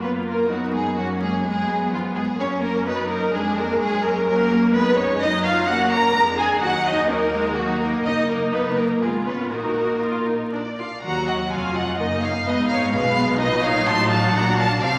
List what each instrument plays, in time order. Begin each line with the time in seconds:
Already playing: double bass section F#2, viola section A#3
0.01 cello section B3, viola section F4, violin section B4
0.25 cello section A#3, violin section A#4
0.48 cello section F#3, viola section B3 D#4, violin section F#4
0.73 cello section G#3, violin section G#4
0.97 cello section F#3, viola section A#3 C#4, violin section F#4
1.21 cello section G#3, violin section G#4
1.44 viola section G#3 B3, cello section G#3, violin section G#4
1.68 viola section B3
1.92 cello section F3, violin section F4
2.16 cello section G#3, violin section G#4
2.38 double bass section F#2, viola section A#3 C#4, cello section C#4, violin section C#5
2.63 cello section A#3, violin section A#4
2.86 viola section F#3 D#4, cello section B3, violin section B4
3.10 cello section A#3, violin section A#4
3.34 double bass section F2, viola section G#3 D4, cello section G#3, violin section G#4
3.58 cello section A#3, violin section A#4
3.81 double bass section F#2, cello section G#3, viola section C#4, violin section G#4
4.04 cello section A#3, violin section A#4
4.28 viola section F#3, cello section A#3, violin section A#4
4.52 viola section A#3
4.75 viola section G#3 D#4, cello section B3, violin section B4
4.98 cello section C#4, violin section C#5
5.22 viola section F#3 D#4, cello section D#4, violin section D#5
5.45 cello section F4, violin section F5
5.69 viola section A#3 C#4, cello section F#4, violin section F#5
5.92 cello section A#4, violin section A#5
6.16 double bass section F2, viola section G#3 D4
6.38 cello section G#4, violin section G#5
6.62 double bass section D#2, viola section F#3 D#4, cello section F#4, violin section F#5
6.86 cello section D#4, violin section D#5
7.10 viola section F#3, cello section A#3, violin section A#4
7.35 viola section G#3
7.58 cello section F#3, viola section A#3 D#4, violin section F#4
7.82 cello section A#3, violin section A#4
8.05 double bass section F#1, viola section A#3 D#4, cello section D#4, violin section D#5
8.30 cello section A#3, violin section A#4
8.53 cello section B3, violin section B4
8.77 cello section A#3, violin section A#4
9.01 double bass section G#1, cello section G#3, viola section B3 F4, violin section G#4
9.26 cello section B3, viola section C#4, violin section B4
9.51 double bass section A#1, cello section A#3, viola section D#4 F#4, violin section A#4
10.02 viola section F4
10.28 viola section D#4
10.53 viola section D4, violin section A#4 D5
10.78 viola section F4, violin section D5 F5
11.03 double bass section D#2, cello section D#2, viola section F#3 F#4, violin section F#5 A#5
11.27 violin section D#5 F#5
11.51 double bass section F1, cello section F2, viola section F4, violin section F5 G#5
11.75 violin section D#5 F#5
11.99 double bass section F#1, cello section F#2, viola section A#3 D#4, violin section A#4 D#5
12.23 violin section C#5 F5
12.47 double bass section G#1, cello section G#2, viola section B3 D#4, violin section B4 D#5
12.69 violin section C#5 F5
12.93 double bass section B1, cello section B2, viola section G#3 C#4, violin section B4 F5
13.18 viola section B3
13.41 double bass section A#1, cello section A#2, viola section F#3 D#4, violin section B4 D#5
13.64 violin section C#5 F5
13.87 double bass section A1, cello section A2, violin section A5 C6
14.11 violin section F5 A5
14.34 double bass section A#1, cello section A#2, viola section D4, violin section F#5 A#5
14.57 violin section F5 A5
14.81 double bass section C2, cello section C3, viola section C4, violin section D5 F5